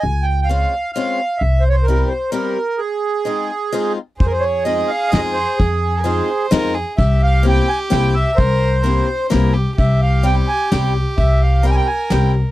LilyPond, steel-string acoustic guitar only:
\new Staff \with { instrumentName = "Steel-string acoustic guitar" } { \time 3/4 \key f \minor \tempo 4 = 130 r4 <aes c' des' f'>8 r8 <aes c' des' f'>8 r8 | r4 <g c' e' g'>8 r8 <g c' e' g'>8 r8 | r4 <aes c' ees' f'>8 r8 <aes c' ees' f'>8 r8 | r4 <aes c' ees' f'>8 r8 <aes c' ees' f'>8 r8 |
r4 <aes c' ees' f'>8 r8 <aes c' ees' f'>8 r8 | r4 <bes c' e' g'>8 r8 <bes c' e' g'>8 r8 | r4 <bes c' e' g'>8 r8 <bes c' e' g'>8 r8 | r4 <g c' e' g'>8 r8 <g c' e' g'>8 r8 |
r4 <g c' e' g'>8 r8 <g c' e' g'>8 r8 | }